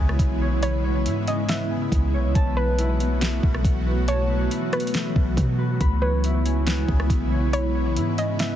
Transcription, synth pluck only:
0, 0, Header, 1, 2, 480
1, 0, Start_track
1, 0, Key_signature, 4, "minor"
1, 0, Tempo, 431655
1, 696, Time_signature, 4, 2, 24, 8
1, 9515, End_track
2, 0, Start_track
2, 0, Title_t, "Synth pluck"
2, 0, Program_c, 0, 84
2, 0, Note_on_c, 0, 71, 81
2, 170, Note_off_c, 0, 71, 0
2, 697, Note_on_c, 0, 73, 103
2, 1374, Note_off_c, 0, 73, 0
2, 1421, Note_on_c, 0, 75, 87
2, 1647, Note_off_c, 0, 75, 0
2, 1662, Note_on_c, 0, 76, 79
2, 2110, Note_off_c, 0, 76, 0
2, 2854, Note_on_c, 0, 71, 87
2, 4011, Note_off_c, 0, 71, 0
2, 4540, Note_on_c, 0, 73, 104
2, 5215, Note_off_c, 0, 73, 0
2, 5258, Note_on_c, 0, 71, 89
2, 5934, Note_off_c, 0, 71, 0
2, 6691, Note_on_c, 0, 71, 81
2, 7849, Note_off_c, 0, 71, 0
2, 8376, Note_on_c, 0, 73, 104
2, 9053, Note_off_c, 0, 73, 0
2, 9101, Note_on_c, 0, 75, 89
2, 9327, Note_off_c, 0, 75, 0
2, 9341, Note_on_c, 0, 76, 75
2, 9515, Note_off_c, 0, 76, 0
2, 9515, End_track
0, 0, End_of_file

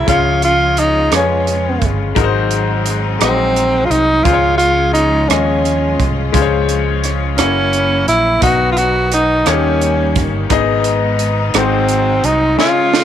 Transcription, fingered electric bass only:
0, 0, Header, 1, 2, 480
1, 0, Start_track
1, 0, Tempo, 694444
1, 55, Time_signature, 6, 3, 24, 8
1, 9013, End_track
2, 0, Start_track
2, 0, Title_t, "Fingered electric bass"
2, 0, Program_c, 0, 33
2, 53, Note_on_c, 0, 37, 81
2, 748, Note_off_c, 0, 37, 0
2, 771, Note_on_c, 0, 41, 59
2, 1226, Note_off_c, 0, 41, 0
2, 1257, Note_on_c, 0, 31, 67
2, 1478, Note_off_c, 0, 31, 0
2, 1494, Note_on_c, 0, 32, 78
2, 2189, Note_off_c, 0, 32, 0
2, 2216, Note_on_c, 0, 34, 60
2, 2670, Note_off_c, 0, 34, 0
2, 2696, Note_on_c, 0, 36, 73
2, 2919, Note_off_c, 0, 36, 0
2, 2941, Note_on_c, 0, 37, 81
2, 3633, Note_off_c, 0, 37, 0
2, 3660, Note_on_c, 0, 39, 69
2, 4113, Note_off_c, 0, 39, 0
2, 4145, Note_on_c, 0, 36, 61
2, 4364, Note_off_c, 0, 36, 0
2, 4384, Note_on_c, 0, 37, 78
2, 5102, Note_on_c, 0, 30, 66
2, 5113, Note_off_c, 0, 37, 0
2, 5554, Note_off_c, 0, 30, 0
2, 5579, Note_on_c, 0, 34, 63
2, 5801, Note_off_c, 0, 34, 0
2, 5822, Note_on_c, 0, 35, 77
2, 6514, Note_off_c, 0, 35, 0
2, 6543, Note_on_c, 0, 39, 72
2, 7023, Note_on_c, 0, 31, 63
2, 7034, Note_off_c, 0, 39, 0
2, 7242, Note_off_c, 0, 31, 0
2, 7260, Note_on_c, 0, 32, 82
2, 7951, Note_off_c, 0, 32, 0
2, 7976, Note_on_c, 0, 32, 83
2, 8428, Note_off_c, 0, 32, 0
2, 8455, Note_on_c, 0, 36, 64
2, 8676, Note_off_c, 0, 36, 0
2, 9013, End_track
0, 0, End_of_file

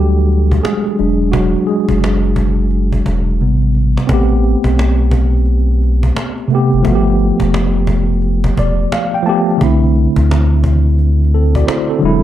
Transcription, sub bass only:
0, 0, Header, 1, 2, 480
1, 0, Start_track
1, 0, Tempo, 689655
1, 928, Time_signature, 4, 2, 24, 8
1, 8513, End_track
2, 0, Start_track
2, 0, Title_t, "Sub bass"
2, 0, Program_c, 0, 38
2, 0, Note_on_c, 0, 38, 91
2, 419, Note_off_c, 0, 38, 0
2, 692, Note_on_c, 0, 28, 98
2, 1085, Note_off_c, 0, 28, 0
2, 1317, Note_on_c, 0, 30, 98
2, 2099, Note_off_c, 0, 30, 0
2, 2131, Note_on_c, 0, 28, 101
2, 2376, Note_on_c, 0, 33, 88
2, 2386, Note_off_c, 0, 28, 0
2, 2767, Note_off_c, 0, 33, 0
2, 2852, Note_on_c, 0, 33, 110
2, 3173, Note_off_c, 0, 33, 0
2, 3233, Note_on_c, 0, 35, 91
2, 4256, Note_off_c, 0, 35, 0
2, 4686, Note_on_c, 0, 30, 89
2, 4756, Note_off_c, 0, 30, 0
2, 4769, Note_on_c, 0, 31, 107
2, 5091, Note_off_c, 0, 31, 0
2, 5152, Note_on_c, 0, 29, 95
2, 5936, Note_off_c, 0, 29, 0
2, 5974, Note_on_c, 0, 28, 94
2, 6169, Note_off_c, 0, 28, 0
2, 6692, Note_on_c, 0, 36, 104
2, 7014, Note_off_c, 0, 36, 0
2, 7077, Note_on_c, 0, 38, 96
2, 8099, Note_off_c, 0, 38, 0
2, 8373, Note_on_c, 0, 28, 98
2, 8513, Note_off_c, 0, 28, 0
2, 8513, End_track
0, 0, End_of_file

